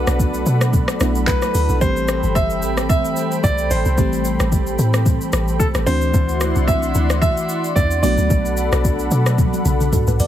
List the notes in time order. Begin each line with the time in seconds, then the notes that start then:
Already playing: F#3 A3 B3 D4 F#4 A4 B4 D5 F#5 B5
0.07 B1, cross-stick, shaker
0.20 kick, shaker
0.34 shaker
0.46 B2, shaker
0.61 cross-stick, shaker
0.73 kick, shaker
0.88 cross-stick, shaker
1.00 B1 F#3 A3 B3 D4 E4, cross-stick, shaker
1.15 shaker
1.27 B1 B4, kick, clap, shaker
1.42 cross-stick, shaker
1.55 D2, open hi-hat, shaker
1.69 B1, shaker
1.81 A1 E3 G3 A3 C4 G4 C5 G5, kick, shaker
1.97 shaker
2.08 cross-stick, shaker
2.23 G1, shaker
2.35 E5, kick, shaker
2.50 shaker
2.62 A1, shaker
2.77 cross-stick, shaker
2.89 E5, kick, shaker
3.05 shaker
3.16 shaker
3.32 shaker
3.44 C2 D5, kick, shaker
3.58 shaker
3.71 A1 C5, open hi-hat, shaker
3.85 C2, shaker
3.97 A1 E3 G3 A3 C4 G4, kick, shaker
4.13 shaker
4.25 shaker
4.40 A1, cross-stick, shaker
4.52 kick, shaker
4.67 shaker
4.79 A2, shaker
4.94 cross-stick, shaker
5.06 kick, shaker
5.21 shaker
5.33 A1, cross-stick, shaker
5.48 shaker
5.60 A4, kick, shaker
5.75 A1, cross-stick, shaker
5.86 D2 E3 A3 C4 D4 E4 F#4 C5 D5 F#5 C6, open hi-hat, shaker
6.01 shaker
6.14 D2, kick, shaker
6.29 shaker
6.41 cross-stick, shaker
6.56 C2, shaker
6.68 E5, kick, shaker
6.83 shaker
6.95 D2, shaker
7.10 cross-stick, shaker
7.22 E5, kick, shaker
7.37 shaker
7.49 shaker
7.64 shaker
7.76 E2 D5, kick, shaker
7.91 shaker
8.02 B1 F#3 A3 B3 D4 F#4 A4 D5 F#5 B5, open hi-hat, shaker
8.18 D2, shaker
8.30 B1, kick, shaker
8.45 shaker
8.57 shaker
8.72 B1, cross-stick, shaker
8.85 kick, shaker
8.99 shaker
9.11 B2, shaker
9.26 cross-stick, shaker
9.38 kick, high tom, shaker
9.53 high tom, shaker
9.65 B1, mid tom, shaker
9.80 mid tom, shaker
9.93 F#4 A4, kick, mid tom, shaker
10.07 B1 B4, mid tom, shaker
10.19 E2 B4 D5, floor tom, open hi-hat, shaker